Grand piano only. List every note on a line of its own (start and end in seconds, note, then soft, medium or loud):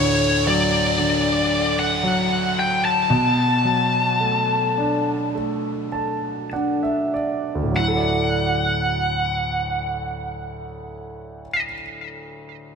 0.00 3.06 D2 medium
0.00 1.47 A2 soft
0.00 0.96 D3 soft
0.47 2.02 F#3 soft
0.98 3.06 D3 soft
2.03 3.07 F#3 soft
3.10 7.71 B2 medium
3.64 5.88 F#3 soft
4.20 5.33 A3 soft
4.77 6.51 D4 soft
5.35 7.71 A3 soft
5.92 6.48 A5 soft
6.53 7.72 D4 soft
6.53 6.81 F#5 soft
6.83 7.11 E5 soft
7.14 7.71 D5 soft
7.55 11.39 D2 soft
7.63 11.47 A2 soft
7.72 11.56 F#3 soft
7.79 11.64 E4 soft
7.88 11.72 A4 soft
7.96 11.81 D5 soft